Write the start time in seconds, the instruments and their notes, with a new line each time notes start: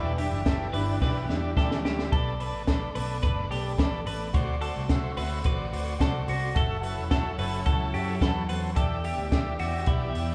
Already playing: picked electric bass E1, steel-string acoustic guitar E2 B2 E3 G3 D4 E4, string section E3 B3 D4 G4, transistor combo organ E4 G4 D5, clean electric guitar B4
0.18 steel-string acoustic guitar E3 G3 D4 E4, transistor combo organ E4 G4 D5, clean electric guitar G4, open hi-hat
0.32 picked electric bass F#1
0.45 steel-string acoustic guitar E3 G3 D4 E4, transistor combo organ E4 G4 A4, kick, snare, hi-hat pedal, ride
0.73 picked electric bass G1, steel-string acoustic guitar E3 G3 D4 E4, transistor combo organ E4 G4 D5, clean electric guitar B4, open hi-hat
1.01 picked electric bass B1, steel-string acoustic guitar E2 B2 E3 G3 D4 E4, transistor combo organ E4 G4 D5, clean electric guitar B4, kick, snare
1.29 picked electric bass E2, steel-string acoustic guitar E3 G3 D4 E4, transistor combo organ E4 G4 D5, snare
1.57 picked electric bass D2, steel-string acoustic guitar E3 G3 D4 E4, transistor combo organ E4 G4 D5, clean electric guitar A4, kick, snare
1.71 snare
1.84 picked electric bass D2, steel-string acoustic guitar E3 G3 D4 E4, transistor combo organ E4 G4 D5, clean electric guitar G4, snare
1.99 snare
2.12 picked electric bass B1, string section A3 B3 D4, transistor combo organ A4 B4 D5, clean electric guitar A4, kick, ride
2.40 transistor combo organ A4 B4 D5, clean electric guitar B4, open hi-hat
2.53 picked electric bass A1
2.67 clean electric guitar A4, transistor combo organ A4 B4 D5, kick, snare, hi-hat pedal, ride
2.95 picked electric bass B1, transistor combo organ A4 B4 D5, clean electric guitar B4, open hi-hat
3.23 picked electric bass F#1, transistor combo organ A4 B4 D5, clean electric guitar B4, kick, hi-hat pedal, ride
3.51 picked electric bass B1, clean electric guitar G4, transistor combo organ A4 B4 D5, open hi-hat
3.78 picked electric bass A1, transistor combo organ A4 B4 D5, clean electric guitar A4, kick, snare, hi-hat pedal, ride
4.05 picked electric bass A1, transistor combo organ A4 B4 D5, clean electric guitar B4, open hi-hat
4.34 picked electric bass D2, string section D3 C4 F#4, transistor combo organ F#4 C5 D5, clean electric guitar C5, kick, hi-hat pedal, ride
4.61 transistor combo organ F#4 C5 D5, clean electric guitar A4, open hi-hat
4.76 picked electric bass C2
4.89 transistor combo organ F#4 C5 E5, kick, snare, hi-hat pedal, ride
5.17 picked electric bass D2, transistor combo organ F#4 C5 E5, clean electric guitar B4, open hi-hat
5.44 picked electric bass A1, transistor combo organ F#4 C5 D5, clean electric guitar B4, kick, hi-hat pedal, ride
5.72 picked electric bass D2, transistor combo organ F#4 C5 D5, open hi-hat
5.99 picked electric bass C2, transistor combo organ F#4 C5 D5, clean electric guitar A4, kick, snare, hi-hat pedal, ride
6.26 picked electric bass C2, transistor combo organ F#4 C5 D5, clean electric guitar F#4, open hi-hat
6.55 picked electric bass F#1, string section F#3 C#4 E4 A4, transistor combo organ F#4 A4 E5, clean electric guitar A4, kick, hi-hat pedal, ride
6.81 transistor combo organ F#4 A4 E5, clean electric guitar B4, open hi-hat
6.97 picked electric bass E1
7.10 transistor combo organ F#4 A4 E5, clean electric guitar A4, kick, snare, hi-hat pedal, ride
7.38 picked electric bass F#1, transistor combo organ F#4 A4 E5, clean electric guitar B4, open hi-hat
7.66 picked electric bass C#2, transistor combo organ F#4 A4 E5, clean electric guitar A4, kick, hi-hat pedal, ride
7.94 picked electric bass F#2, transistor combo organ F#4 A4 E5, clean electric guitar G4, open hi-hat
8.21 picked electric bass E2, transistor combo organ F#4 A4 B4, clean electric guitar A4, kick, snare, hi-hat pedal, ride
8.48 picked electric bass E2, transistor combo organ F#4 A4 C5, clean electric guitar B4, open hi-hat
8.75 picked electric bass E2, string section E3 B3 D4 G4, transistor combo organ G4 D5 E5, clean electric guitar A4, kick, hi-hat pedal, ride
9.04 transistor combo organ G4 D5 E5, clean electric guitar G4, open hi-hat
9.18 picked electric bass D2
9.31 transistor combo organ G4 D5 E5, kick, snare, hi-hat pedal, ride
9.59 picked electric bass E2, clean electric guitar F#4, transistor combo organ G4 D5 E5, open hi-hat
9.86 picked electric bass B1, clean electric guitar E4, transistor combo organ G4 D5 E5, kick, hi-hat pedal, ride
10.15 picked electric bass E2, transistor combo organ G4 D5 E5, open hi-hat